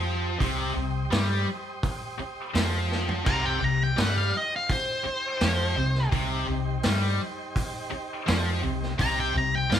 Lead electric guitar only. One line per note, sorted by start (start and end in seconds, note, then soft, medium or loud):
0.00 2.52 C5 medium
3.27 3.44 A#5 loud
3.46 3.62 G5 medium
3.64 3.83 A#5 medium
3.83 3.99 G5 medium
4.01 4.17 F#5 medium
4.18 4.37 F5 medium
4.37 4.53 D#5 medium
4.56 4.71 F5 medium
4.71 6.09 C5 medium
9.01 9.18 A#5 loud
9.20 9.36 G5 medium
9.38 9.55 A#5 loud
9.55 9.74 G5 medium
9.74 9.80 F5 medium